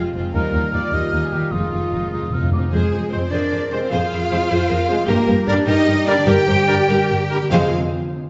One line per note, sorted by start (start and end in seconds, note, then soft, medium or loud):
0.00 0.36 F2 medium
0.00 0.14 C3 soft
0.00 0.17 C3 medium
0.00 0.15 F3 soft
0.00 0.15 G#3 soft
0.00 0.17 G#3 medium
0.00 0.13 C4 soft
0.00 0.17 C4 medium
0.00 0.36 C4 soft
0.00 0.14 F4 soft
0.00 0.17 F4 medium
0.00 0.72 F4 soft
0.00 0.36 G#4 soft
0.14 0.23 F1 medium
0.14 0.22 F2 soft
0.14 0.36 C3 soft
0.14 0.34 F3 soft
0.14 0.35 G#3 soft
0.14 0.34 C4 soft
0.14 0.33 F4 soft
0.34 0.42 D#2 medium
0.34 0.89 D#3 soft
0.34 1.55 D#3 medium
0.34 0.54 F3 soft
0.34 0.89 G3 medium
0.34 0.54 G3 medium
0.34 0.89 A#3 medium
0.34 0.52 D#4 soft
0.34 0.89 F4 medium
0.34 0.52 F4 soft
0.34 1.54 G4 soft
0.34 0.70 A#4 medium
0.34 0.71 A#4 medium
0.34 1.53 F6 medium
0.53 0.61 D#2 soft
0.53 0.73 F3 soft
0.53 0.74 G3 soft
0.53 0.70 D#4 soft
0.53 1.70 D#4 soft
0.53 0.70 F4 soft
0.71 0.81 D#2 soft
0.71 0.93 F3 soft
0.71 0.90 D#4 soft
0.71 0.90 F4 soft
0.71 1.12 F4 soft
0.71 0.95 D5 medium
0.71 0.93 D5 medium
0.75 0.93 G3 soft
0.91 1.00 D#2 soft
0.91 1.01 D#2 soft
0.91 1.51 D#3 soft
0.91 1.13 F3 soft
0.91 1.52 G3 soft
0.91 1.12 G3 soft
0.91 1.51 A#3 soft
0.91 1.10 D#4 soft
0.91 1.10 F4 soft
0.91 1.51 F4 soft
0.91 1.54 G4 soft
0.91 1.23 D#5 medium
0.91 1.22 D#5 medium
1.11 1.21 D#2 soft
1.11 1.33 F3 soft
1.11 1.33 G3 soft
1.11 1.32 D#4 soft
1.11 1.32 F4 soft
1.11 1.91 F4 soft
1.23 1.34 G#4 medium
1.23 1.33 G#4 soft
1.32 1.40 D#2 soft
1.32 1.41 D#2 soft
1.32 1.53 F3 soft
1.32 1.53 G3 soft
1.32 1.54 A#3 soft
1.32 1.52 D#4 soft
1.32 1.52 F4 soft
1.32 1.53 G4 soft
1.51 1.61 F1 soft
1.51 1.61 F2 soft
1.51 1.59 F2 soft
1.51 2.50 D#3 soft
1.51 2.71 F3 soft
1.51 1.73 F3 soft
1.51 2.52 G#3 soft
1.51 1.73 G#3 soft
1.51 2.53 C4 soft
1.51 1.72 D#4 soft
1.51 2.52 F4 medium
1.51 2.51 F4 soft
1.51 1.73 F4 soft
1.51 2.53 G#4 soft
1.51 2.08 D#6 soft
1.60 1.67 F2 soft
1.68 1.75 F2 soft
1.68 2.73 D#4 soft
1.73 1.81 F1 soft
1.73 1.81 F2 soft
1.73 1.92 F3 soft
1.73 1.92 G#3 soft
1.73 1.91 D#4 soft
1.73 1.91 F4 soft
1.77 1.83 F2 soft
1.85 1.91 F2 soft
1.92 2.01 F1 soft
1.92 1.98 F2 soft
1.92 2.00 F2 soft
1.92 2.11 F3 soft
1.92 2.11 G#3 soft
1.92 2.12 D#4 soft
1.92 2.31 F4 soft
1.92 2.11 F4 soft
1.99 2.06 F2 soft
2.07 2.14 F2 soft
2.12 2.20 F1 soft
2.12 2.20 F2 soft
2.12 2.21 F2 soft
2.12 2.31 F3 soft
2.12 2.31 G#3 soft
2.12 2.31 D#4 soft
2.12 2.32 F4 soft
2.12 2.90 G#4 soft
2.12 2.35 D#6 soft
2.22 2.29 F2 soft
2.30 2.40 F1 soft
2.30 2.37 F2 soft
2.30 2.41 F2 soft
2.30 2.52 F3 soft
2.30 2.51 G#3 soft
2.30 2.52 D#4 soft
2.30 2.80 F4 soft
2.30 2.52 F4 soft
2.34 2.42 F2 medium
2.34 2.52 F6 soft
2.44 2.50 F2 medium
2.52 2.60 F1 soft
2.52 2.58 F2 medium
2.52 2.60 F2 soft
2.52 2.72 F3 soft
2.52 2.72 G#3 soft
2.52 3.80 C4 soft
2.52 2.72 D#4 soft
2.52 2.72 F4 soft
2.52 2.59 D6 soft
2.59 2.66 F2 medium
2.70 2.81 F2 medium
2.70 3.90 F3 medium
2.70 3.08 G#3 medium
2.70 3.09 G#3 medium
2.70 3.08 G#4 medium
2.70 2.90 G#4 medium
2.70 3.12 G#4 medium
2.70 3.09 G#4 medium
2.70 2.90 C5 medium
2.81 3.71 F4 soft
2.91 3.00 F2 soft
2.91 3.60 G#4 soft
2.91 3.00 G#4 soft
2.91 3.00 C5 soft
3.01 4.20 C5 soft
3.10 3.20 F2 soft
3.10 3.18 C3 medium
3.10 3.19 G#3 medium
3.10 3.31 C4 medium
3.10 3.20 G#4 soft
3.10 3.32 C5 medium
3.10 3.19 C5 medium
3.10 3.31 C5 medium
3.10 3.20 C5 soft
3.10 3.50 F5 soft
3.20 3.40 G#5 soft
3.31 3.40 F2 medium
3.31 3.70 D4 medium
3.31 3.71 D4 medium
3.31 3.50 G#4 medium
3.31 3.93 A#4 medium
3.31 3.50 C5 medium
3.31 3.70 D5 medium
3.31 3.71 D5 medium
3.31 3.72 D5 medium
3.31 4.50 C6 medium
3.41 4.40 G#5 soft
3.51 3.60 F2 soft
3.51 3.59 G#4 medium
3.51 3.59 C5 soft
3.51 4.30 F5 medium
3.62 4.11 G#4 soft
3.70 3.78 C3 medium
3.70 3.78 G#3 medium
3.70 3.91 C4 medium
3.70 3.92 C4 medium
3.70 4.00 F4 soft
3.70 3.90 C5 medium
3.70 3.91 C5 medium
3.70 3.78 C5 medium
3.70 3.91 C5 medium
3.82 4.98 C4 soft
3.91 4.00 F2 medium
3.91 5.10 F3 medium
3.91 5.08 F4 medium
3.91 5.06 F4 medium
3.91 4.10 G#4 medium
3.91 4.52 G#4 medium
3.91 4.10 C5 medium
3.91 5.05 F5 medium
3.91 5.08 F5 medium
3.91 5.06 F5 medium
4.11 4.20 F2 soft
4.11 4.19 G#4 soft
4.11 4.79 G#4 soft
4.11 4.19 C5 soft
4.21 5.10 C5 soft
4.30 4.38 F2 medium
4.30 4.37 C3 medium
4.30 4.37 G#3 medium
4.30 4.38 G#4 medium
4.30 4.38 C5 soft
4.30 4.38 C5 medium
4.41 4.59 G#5 medium
4.49 4.58 F2 medium
4.49 4.68 G#4 medium
4.49 4.68 C5 medium
4.49 5.10 C6 medium
4.61 5.10 G#5 medium
4.69 4.77 F2 soft
4.69 4.77 G#4 medium
4.69 4.90 A#4 medium
4.69 4.77 C5 medium
4.81 5.10 G#4 medium
4.89 4.95 C3 medium
4.89 4.96 G#3 medium
4.89 5.10 F4 soft
4.89 5.10 G#4 medium
4.89 4.96 C5 medium
5.07 5.16 G2 medium
5.07 6.27 G2 medium
5.07 5.46 A#3 medium
5.07 5.46 A#3 loud
5.07 5.26 G4 medium
5.07 6.26 G4 medium
5.07 5.49 A#4 medium
5.07 5.26 A#4 medium
5.07 5.47 A#4 medium
5.18 6.06 A#3 medium
5.28 5.35 G2 medium
5.28 5.35 G4 medium
5.28 5.36 A#4 medium
5.38 6.57 G4 medium
5.47 5.55 G2 medium
5.47 5.54 D3 medium
5.47 5.54 G3 medium
5.47 5.66 D4 medium
5.47 5.67 D4 loud
5.47 5.55 G4 medium
5.47 5.55 A#4 medium
5.47 5.54 A#4 medium
5.47 5.68 D5 medium
5.47 5.56 D5 medium
5.47 5.57 D5 medium
5.58 7.54 D6 medium
5.66 5.75 G2 medium
5.66 6.06 D#4 loud
5.66 6.07 D#4 loud
5.66 5.85 G4 medium
5.66 5.85 A#4 medium
5.66 6.07 D#5 loud
5.66 6.07 D#5 medium
5.66 6.89 G5 medium
5.76 6.78 D5 medium
5.86 5.96 G2 medium
5.86 5.94 G4 medium
5.86 5.95 A#4 medium
5.86 6.67 A#4 medium
5.97 6.47 D4 medium
6.05 6.14 D3 medium
6.05 6.14 G3 medium
6.05 6.36 A#3 medium
6.05 6.26 D4 loud
6.05 6.27 D4 medium
6.05 6.14 A#4 medium
6.05 6.27 D5 medium
6.05 6.26 D5 medium
6.05 6.28 D5 loud
6.18 7.42 D3 medium
6.26 6.35 G2 loud
6.26 7.54 G2 medium
6.26 6.45 G4 medium
6.26 7.52 G4 loud
6.26 7.49 G4 loud
6.26 6.46 A#4 medium
6.26 6.47 A#4 loud
6.26 7.52 G5 loud
6.26 7.21 G5 loud
6.26 7.50 G5 loud
6.38 7.31 A#3 medium
6.46 6.56 G2 medium
6.46 7.20 D4 medium
6.46 6.54 G4 medium
6.46 6.55 A#4 medium
6.46 6.67 C5 medium
6.58 7.54 G4 medium
6.67 6.77 G2 medium
6.67 6.75 D3 medium
6.67 6.75 G3 medium
6.67 6.76 G4 medium
6.67 6.75 A#4 medium
6.67 6.76 A#4 medium
6.67 6.90 D5 medium
6.79 6.99 D5 medium
6.88 6.96 G2 loud
6.88 7.08 G4 medium
6.88 7.20 A#4 medium
6.88 7.08 A#4 medium
6.88 7.54 G5 medium
7.01 7.54 D5 medium
7.10 7.19 G2 medium
7.10 7.19 G4 medium
7.10 7.54 A#4 medium
7.10 7.19 A#4 medium
7.21 7.54 D4 medium
7.30 7.38 D3 medium
7.30 7.38 G3 medium
7.30 7.54 A#3 medium
7.30 7.38 A#4 medium
7.43 7.54 D3 medium
7.49 7.75 F2 medium
7.49 7.71 F2 medium
7.49 7.68 C3 medium
7.49 7.76 F3 medium
7.49 7.75 F3 medium
7.49 7.68 G#3 medium
7.49 7.75 C4 medium
7.49 7.76 C4 medium
7.49 7.69 F4 loud
7.49 7.70 C5 medium
7.49 7.75 F5 medium
7.53 7.76 F2 medium
7.53 7.75 F4 medium
7.53 7.76 G#4 medium
7.53 7.75 G#4 medium
7.53 7.76 F5 medium